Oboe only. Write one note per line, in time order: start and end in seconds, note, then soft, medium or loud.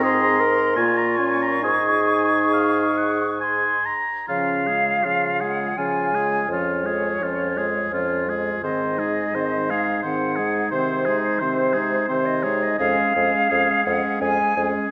0.04 0.21 A#5 medium
0.21 0.38 A#5 medium
0.38 0.56 A#5 medium
0.56 0.76 A#5 medium
0.76 0.99 G#5 medium
0.98 1.19 A#5 soft
1.17 1.44 G#5 soft
1.42 1.63 A#5 soft
1.64 1.86 G#5 medium
1.86 2.09 G#5 soft
2.09 2.31 G#5 soft
2.31 2.53 G#5 soft
2.54 2.99 F5 medium
2.98 3.28 F#5 soft
3.41 3.87 G#5 medium
3.86 4.27 A#5 soft
4.28 4.68 F4 soft
4.67 5.05 G#4 soft
5.03 5.42 F4 soft
5.40 5.77 G#4 soft
5.78 6.16 F4 soft
6.15 6.50 G#4 soft
6.51 6.88 F4 soft
6.86 7.24 G#4 soft
7.23 7.59 F4 soft
7.57 7.92 G#4 soft
7.93 8.31 F4 soft
8.29 8.63 G#4 soft
8.64 9.00 C5 soft
8.99 9.36 G#4 soft
9.35 9.71 C5 soft
9.70 10.02 G#4 soft
10.02 10.37 C5 soft
10.36 10.71 G#4 soft
10.71 11.06 C5 soft
11.05 11.41 G#4 soft
11.39 11.75 C5 soft
11.73 12.08 G#4 soft
12.08 12.44 C5 soft
12.43 12.78 G#4 soft
12.78 13.14 G#4 medium
13.15 13.49 G#4 soft
13.50 13.84 G#4 medium
13.85 14.20 G#4 soft
14.21 14.56 G#4 soft
14.57 14.91 G#4 soft